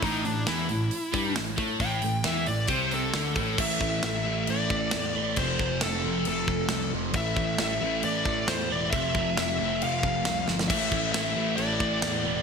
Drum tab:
CC |----------------|----------------|x---x---x---x---|x---x---x---x---|
HH |o-o-o-o-o-o-o-o-|o-o-o-o-o-o-o-o-|----------------|----------------|
SD |----o-------o---|----o-------o---|----o-------o---|----o-------o---|
BD |o---------o---o-|o-------o-----o-|o-o-------o-----|o-o-------o-----|

CC |x---x---x---x---|x---x---x---x---|x---x---x---x---|
HH |----------------|----------------|----------------|
SD |----o-------o---|----o-------o-oo|----o-------o---|
BD |o-o-------o-----|o-o-------o-----|o-o-------o-----|